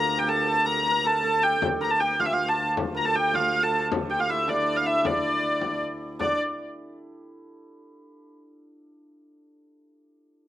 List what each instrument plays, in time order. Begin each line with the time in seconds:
Already playing: viola da gamba D2, hammered dulcimer C4 D4 F4 G4 A#4, hurdy-gurdy A#5
0.18 hammered dulcimer G4, hurdy-gurdy G5
0.27 hammered dulcimer A4, hurdy-gurdy A5
0.42 hammered dulcimer A#4
0.47 hammered dulcimer A4, hurdy-gurdy A5
0.65 hammered dulcimer A#4, hurdy-gurdy A#5
0.79 hammered dulcimer A#4
0.86 hurdy-gurdy A#5
0.91 hammered dulcimer A#4
1.04 hammered dulcimer A4, hurdy-gurdy A5
1.23 hammered dulcimer A4
1.43 hammered dulcimer G4, hurdy-gurdy G5
1.62 viola da gamba D2, frame drum
1.81 hammered dulcimer A#4, hurdy-gurdy A#5
1.91 hurdy-gurdy A5
2.00 hammered dulcimer G4, hurdy-gurdy G5
2.20 hammered dulcimer F4, hurdy-gurdy F5, frame drum
2.25 hurdy-gurdy E5
2.33 hammered dulcimer F4, hurdy-gurdy F5
2.49 hurdy-gurdy A5
2.58 frame drum
2.77 frame drum
2.95 hammered dulcimer A#4, hurdy-gurdy A#5
3.05 hammered dulcimer A4, hurdy-gurdy A5
3.15 hammered dulcimer G4, hurdy-gurdy G5
3.34 hammered dulcimer F4, hurdy-gurdy F5, frame drum
3.62 hammered dulcimer A4, hurdy-gurdy A5
3.72 frame drum
3.92 frame drum
4.09 hammered dulcimer G4, hurdy-gurdy G5
4.19 hammered dulcimer F4, hurdy-gurdy F5
4.29 hammered dulcimer E4, hurdy-gurdy E5
4.48 hammered dulcimer D4, hurdy-gurdy D5, frame drum
4.77 hurdy-gurdy F5
4.86 hammered dulcimer E4, hurdy-gurdy E5, frame drum
5.05 hammered dulcimer D4, hurdy-gurdy D5, frame drum
5.61 frame drum
5.81 frame drum
6.19 hammered dulcimer D4, hurdy-gurdy D5, frame drum